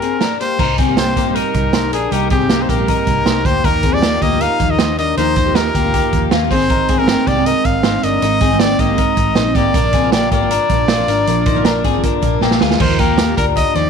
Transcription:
Already playing: A#4
0.02 C4 G#4, closed hi-hat
0.21 D4 A#4, snare, closed hi-hat
0.40 A#3 G4 C5, closed hi-hat
0.59 C2 G3 A#3 D#4 G4 A#4, kick, crash
0.78 C4 G#4, kick, closed hi-hat
0.88 C3 G3 A#3 D#4 G4
0.97 A#3 G4 C5, snare, closed hi-hat
1.16 A#1 A#3 G4, kick, closed hi-hat
1.25 C3 G3 A#3 D#4 G4 C5
1.35 D#4 A#4, closed hi-hat
1.54 C2 G3 A#3 D#4 G4, kick, closed hi-hat
1.73 D#4 C5, snare, closed hi-hat
1.82 A#3 D#4 G4
1.93 A#1 D4 G#4 A#4, closed hi-hat
2.11 C2 G3 A#3 D#4 G4 A#4, closed hi-hat
2.30 C4 G4 G#4, kick, closed hi-hat
2.40 C3 G3 A#3 D#4 G4
2.49 A#3 G4, snare, closed hi-hat
2.62 C5
2.69 A#1 A#3 G4 A#4, kick, closed hi-hat
2.78 C3 G3 A#3 D#4 G4
2.88 D#4 A#4, kick, closed hi-hat
3.06 C2 G3 A#3 D#4 G4, kick, closed hi-hat
3.26 C2 D#4 C5, snare, closed hi-hat
3.34 A#3 D#4 G4
3.45 D2 A#3 G4 C5, kick, closed hi-hat
3.63 D#2 F3 A#3 D#4 G4 A#4, kick, closed hi-hat
3.83 C4 G#4, kick, closed hi-hat
3.93 D#3 F3 A#3 D#4 G4 D5
4.02 A#3 G4, snare, closed hi-hat
4.22 D2 A#3 G4 D#5, kick, closed hi-hat
4.30 D#3 F3 A#3 D#4 G4
4.41 D#4 A#4 F5, closed hi-hat
4.59 D#2 F3 A#3 D#4 G4, kick, closed hi-hat
4.71 D#5
4.79 D#4 C5, snare, closed hi-hat
4.88 A#3 D#4 G4
4.98 D4 A#4 D#5, closed hi-hat
5.16 D#2 F3 A#3 D#4 G4 A#4 C5, closed hi-hat
5.36 D#4 C5, kick, closed hi-hat
5.45 D#3 F3 A#3 D#4 G4
5.55 D#4 A#4, snare, closed hi-hat
5.75 D2 A#3 G4, kick, closed hi-hat
5.84 D#3 F3 A#3 D#4 G4
5.94 A#3 G4, kick, closed hi-hat
6.12 D#2 F3 A#3 D#4 G4, kick, closed hi-hat
6.31 D#2 A#3 F4, snare, closed hi-hat
6.42 A#3 D#4 G4
6.50 G#1 G#2 D#3 G#3 C4 D#4 G#4 C5, kick, open hi-hat
6.70 D#4 A#4, kick, closed hi-hat
6.88 C4 G#4, kick, closed hi-hat
6.99 G#2 D#3 G#3 C4 D#4 G#4 A#4
7.08 C4 G4, snare, closed hi-hat
7.27 C2 A#3 G4 D5, kick, closed hi-hat
7.37 G#2 D#3 G#3 C4 D#4 G#4
7.46 D#4 A#4 D#5, closed hi-hat
7.65 G#1 G#3 C4 D#4 G#4 F5, kick, closed hi-hat
7.83 D#4 C5, snare, closed hi-hat
7.94 G#3 C4 D#4 G#4
8.03 G1 D4 A#4 D#5, closed hi-hat
8.22 G#1 G#3 C4 D#4 G#4 A#4, closed hi-hat
8.40 C4 G#4, kick, closed hi-hat
8.51 G#2 D#3 G#3 C4 D#4 G#4
8.59 C4 G4 D5, snare, closed hi-hat
8.79 G#1 A#3 G4 D#5, kick, closed hi-hat
8.89 G#2 D#3 G#3 C4 D#4 G#4
8.98 D#4 A#4, kick, closed hi-hat
9.16 G#1 G#3 C4 D#4 G#4, kick, closed hi-hat
9.35 A#1 D#4 C5, snare, closed hi-hat
9.45 G#3 C4 D#4 G#4
9.55 G#1 A#3 G4 D5, kick, closed hi-hat
9.74 A#1 F3 A#3 D4 A#4, kick, closed hi-hat
9.93 C4 G#4, kick, closed hi-hat
10.03 A#2 D3 F3 A#3 D4 A#4
10.12 A#3 G4 D5, snare, closed hi-hat
10.32 G#1 A#3 G4 D5, kick, closed hi-hat
10.41 A#2 D3 F3 A#3 D4 A#4
10.51 D4 A#4, closed hi-hat
10.69 A#1 F3 A#3 D4 A#4, kick, closed hi-hat
10.88 F4 C5, snare, closed hi-hat
10.98 F3 A#3 D4 A#4
11.07 G#1 D4 A#4, closed hi-hat
11.26 A#1 F3 A#3 D4 A#4, closed hi-hat
11.46 D#4 C5, kick, closed hi-hat
11.55 A#2 D3 F3 A#3 D4 A#4
11.65 D4 A#4, snare, closed hi-hat
11.84 G#1 C4 G#4, kick, closed hi-hat
11.93 A#2 D3 F3 A#3 D4 A#4
12.03 D4 A#4, kick, closed hi-hat
12.22 A#1 F3 A#3 D4 A#4, kick, closed hi-hat
12.41 A#1 A#3 G4, snare
12.51 F3 A#3 D4 A#4, snare
12.61 D2 G#3 F4, snare
12.70 snare
12.79 D#2 D#3 F3 A#3 D#4 F4 G4 A#4 C5, kick, crash
12.99 A#3 G4 A#4, kick, closed hi-hat
13.08 A#3 F4 G4
13.18 snare, closed hi-hat
13.27 A#3 F4 G4
13.37 D2 D4 A#4, kick, closed hi-hat
13.56 D#5, kick, closed hi-hat
13.74 D#2 F3 A#3 D#4 F4 G4 C5 D5, closed hi-hat

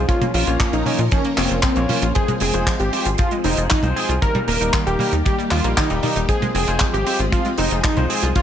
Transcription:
Already playing: F3
0.08 F3 A#3 C#4 F4 A#4 C#5, kick, closed hi-hat
0.21 A#3, closed hi-hat, high tom
0.34 A#1 C#4 F4, open hi-hat
0.47 A#1 A#3 C#4 F4 C#5, closed hi-hat
0.60 F3, kick, clap, closed hi-hat
0.73 A#1 A#3 D#4, closed hi-hat
0.86 A#3 C#4 F4 C#5, open hi-hat, high tom
0.99 A#2 F4, closed hi-hat
1.11 F3 C#4, kick, closed hi-hat
1.25 A#3, closed hi-hat
1.38 F1 A#3 C4 C#4 F4 C#5, clap, open hi-hat
1.49 F1 F4, closed hi-hat
1.63 F3 C4, kick, clap, closed hi-hat
1.76 A#1 A#3 C#4 F4 C#5, closed hi-hat
1.89 C#4 F4, open hi-hat, high tom
2.02 A#1 F4, closed hi-hat
2.15 F3 G#3 C4 F4 G#4 C5, kick, closed hi-hat
2.28 G#3, closed hi-hat, high tom
2.40 F1 C4 G#4, open hi-hat
2.53 F1 G#3 C4 F4 C5, closed hi-hat
2.67 F3, kick, clap, closed hi-hat
2.79 G#1 G#3 G4, closed hi-hat
2.93 G#3 C4 F4 C5, open hi-hat
3.05 G#1 F4, closed hi-hat
3.18 F3 F4, kick, closed hi-hat
3.31 G#3, closed hi-hat
3.44 F1 G#3 C4 D#4 F4 C5, open hi-hat
3.57 F1 F4, closed hi-hat
3.70 F3 D#4, kick, clap, closed hi-hat
3.83 C2 G#3 C4 F4 C5, closed hi-hat, high tom
3.96 C4 G#4, open hi-hat
4.09 C2 F4, closed hi-hat
4.22 D#3 G3 A#3 D#4 G4 A#4, kick, closed hi-hat
4.35 G3, closed hi-hat, high tom
4.48 D#1 A#3 A#4, open hi-hat
4.61 D#1 G3 A#3 D#4 A#4, closed hi-hat
4.73 D#3, kick, clap, closed hi-hat
4.87 D#1 G3 G4, closed hi-hat
4.99 G3 A#3 D#4 A#4, open hi-hat, high tom
5.13 D#2 D#4, closed hi-hat
5.25 D#3 G4, kick, closed hi-hat
5.38 G3, closed hi-hat
5.51 D#2 D#3 F4, clap, open hi-hat
5.64 A#1 G3 A#3 D#4 A#4, closed hi-hat
5.77 D#3 D#4, kick, clap, closed hi-hat
5.90 D#1 G3 A#3 D#4 G4, closed hi-hat
6.03 G3 D#4, open hi-hat, high tom
6.16 D#1 D#4, closed hi-hat
6.29 F3 G#3 C4 F4 G#4 C5, kick, closed hi-hat
6.42 G#3, closed hi-hat, high tom
6.55 F1 C4 G#4, open hi-hat
6.67 F1 G#3 C4 F4 C5, closed hi-hat
6.80 F3, kick, clap, closed hi-hat
6.93 G#1 G#3 G4, closed hi-hat
7.06 G#3 C4 F4 C5, open hi-hat
7.19 G#1 F4, closed hi-hat
7.32 F3 F4, kick, closed hi-hat
7.45 G#3, closed hi-hat
7.58 F1 G#3 C4 D#4 F4 C5, open hi-hat
7.71 F1 F4, closed hi-hat
7.84 F3 D#4, kick, clap, closed hi-hat
7.97 C2 G#3 C4 F4 C5, closed hi-hat, high tom
8.10 C4 G#4, open hi-hat
8.23 C2 F4, closed hi-hat
8.35 F3 A#3 C#4 F4 A#4 C#5, kick, closed hi-hat

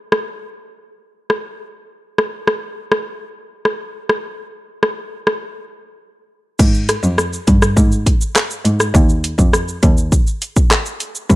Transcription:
0.12 cross-stick
1.30 cross-stick
2.18 cross-stick
2.47 cross-stick
2.92 cross-stick
3.65 cross-stick
4.09 cross-stick
4.83 cross-stick
5.27 cross-stick
6.59 G#2, kick, crash, shaker
6.74 shaker
6.89 cross-stick, closed hi-hat, shaker
7.03 F2, shaker
7.18 cross-stick, shaker
7.33 shaker
7.47 G2, kick, closed hi-hat, shaker
7.62 cross-stick, shaker
7.77 G#2, kick, shaker
7.92 shaker
8.06 kick, closed hi-hat, shaker
8.21 shaker
8.36 cross-stick, clap, shaker
8.50 shaker
8.65 G#2, closed hi-hat, shaker
8.80 cross-stick, shaker
8.95 D#2, kick, shaker
9.09 shaker
9.24 closed hi-hat, shaker
9.39 F2, kick, shaker
9.53 cross-stick, shaker
9.68 shaker
9.83 D#2, kick, closed hi-hat, shaker
9.97 shaker
10.12 kick, shaker
10.27 shaker
10.42 closed hi-hat, shaker
10.56 kick, shaker
10.71 cross-stick, clap, shaker
10.86 shaker
11.00 closed hi-hat, shaker
11.15 shaker
11.30 C2, kick, shaker

